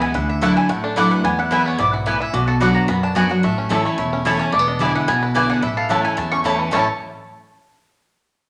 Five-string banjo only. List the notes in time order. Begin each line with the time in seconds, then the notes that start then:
Already playing: E3 B3
0.02 E4
0.15 E4
0.42 A3
0.56 E4
0.70 A3
0.84 D4
0.97 E4
1.11 E3
1.24 B3
1.39 E4
1.52 E4
1.66 B3
1.79 E4
1.93 E4
2.06 E4
2.20 E4
2.34 F#4
2.48 A4
2.61 B3
2.76 F#4
2.89 B3
3.03 D4
3.16 F#4
3.31 F#3
3.44 A3
3.58 C#4
3.72 E4
3.85 A3
3.98 E4
4.13 C#4
4.27 A4
4.41 C#4
4.54 A3
4.59 B3
4.68 D4
4.81 E4
4.95 E4
5.08 B3
5.23 E4
5.36 E3
5.50 D4
5.63 E4
5.77 A4
5.91 A3
6.05 E4
6.18 A3
6.32 C#4
6.45 E4
6.59 E3
6.73 A3 C#4 E4
6.79 A4